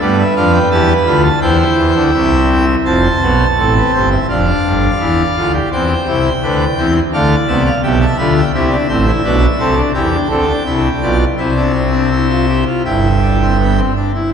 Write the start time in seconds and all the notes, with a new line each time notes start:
0.01 G2 G3 B3 B4 D5
0.19 E5
0.37 F2 F3 D4 F5
0.54 G5
0.71 E2 E3 G4 A5
1.06 D2 D3 F4 B5
1.24 A5
1.42 E2 E3 E4 C5 G5
1.77 E2 E3
1.95 D2 D3
2.14 C2 C3 E5
2.85 F1 F2 C4 C5 A5
3.22 B1 B2 B3
3.58 A1 A2 C4 A4
3.77 B4
3.94 G1 G2 C5
4.11 E5
4.29 F1 F2 D4 D5 F5
4.65 G1 G2
5.00 E2 E3 E4
5.36 D2 D3 F4
5.54 G4
5.72 E2 E3 C4 C5 G5
6.07 C2 C3 E4
6.42 D2 D3 D4 B4
6.78 E2 E3 C4 C5
7.13 D2 D3 A3 D5 F5
7.48 C2 C3 B3 E5
7.66 F5
7.83 B1 B2 G4 E5 G5
8.01 A5
8.19 D2 D3 F4 B5
8.37 G5
8.54 C2 C3 E4 G4 E5
8.71 D4
8.89 A1 A2 C4 C5
9.07 E4
9.24 B1 B2 D4 B4
9.60 C2 C3 C4 A4
9.77 D4
9.94 E2 E3 E4 G4 G5
10.12 D4
10.30 D2 D3 C4 A4
10.47 D4
10.66 C2 C3 E4 E5
11.02 B1 B2 F4 D5
11.38 C2 C3 E4 C5 E5
11.56 D4
11.75 C4
11.92 D4
12.11 E4
12.30 F4
12.48 G4
12.67 F4
12.85 G1 G2 E4 E5 G5
13.22 D4
13.41 C4
13.59 B3
13.77 C4
13.96 D4
14.15 E4